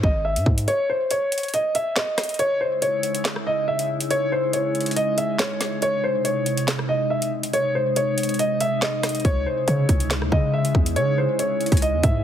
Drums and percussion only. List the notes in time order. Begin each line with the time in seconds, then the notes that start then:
0.03 kick
0.36 closed hi-hat
0.46 kick
0.58 closed hi-hat
0.68 closed hi-hat
1.11 closed hi-hat
1.32 closed hi-hat
1.38 closed hi-hat
1.43 closed hi-hat
1.48 closed hi-hat
1.54 closed hi-hat
1.75 closed hi-hat
1.96 snare, clap
2.18 cross-stick, snare, closed hi-hat
2.23 closed hi-hat
2.29 closed hi-hat
2.34 closed hi-hat
2.39 closed hi-hat
2.82 closed hi-hat
3.03 closed hi-hat
3.15 closed hi-hat
3.25 snare, clap, closed hi-hat
3.36 cross-stick
3.79 closed hi-hat
4.00 closed hi-hat
4.11 closed hi-hat
4.53 closed hi-hat
4.75 closed hi-hat
4.81 closed hi-hat
4.86 closed hi-hat
4.91 closed hi-hat
4.96 closed hi-hat
5.18 closed hi-hat
5.39 snare, clap
5.61 snare, closed hi-hat
5.82 closed hi-hat
6.25 closed hi-hat
6.46 closed hi-hat
6.57 closed hi-hat
6.68 snare, clap, closed hi-hat
6.79 cross-stick
7.22 closed hi-hat
7.43 closed hi-hat
7.53 closed hi-hat
7.96 closed hi-hat
8.18 closed hi-hat
8.23 closed hi-hat
8.29 closed hi-hat
8.34 closed hi-hat
8.39 closed hi-hat
8.60 closed hi-hat
8.82 snare, clap
9.03 cross-stick, snare, closed hi-hat
9.09 closed hi-hat
9.15 closed hi-hat
9.20 closed hi-hat
9.25 kick, closed hi-hat
9.68 closed hi-hat
9.89 kick, closed hi-hat
10.00 closed hi-hat
10.11 snare, clap, closed hi-hat
10.22 cross-stick
10.32 kick
10.65 closed hi-hat
10.75 kick
10.86 closed hi-hat
10.96 closed hi-hat
11.39 closed hi-hat
11.61 closed hi-hat
11.66 closed hi-hat
11.72 kick, closed hi-hat
11.77 closed hi-hat
11.82 closed hi-hat
12.03 kick, closed hi-hat